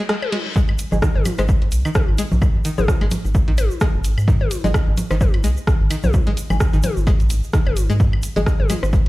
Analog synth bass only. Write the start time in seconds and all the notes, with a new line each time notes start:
0.92 G#1
1.15 G#1
1.38 G#1
1.72 B1
2.08 G#1
2.32 B1
2.78 G#1
3.01 G#1
3.25 G#1
3.48 A#1
3.58 G#1
3.94 F#1
4.04 G#1
4.18 G#2
4.64 G#1
4.87 G#1
5.11 G#1
5.44 B1
5.80 G#1
6.04 B1
6.50 G#1
6.73 G#1
6.97 G#1
7.20 A#1
7.30 G#1
7.67 F#1
7.77 G#1
7.90 G#2
8.36 G#1
8.60 G#1
8.83 G#1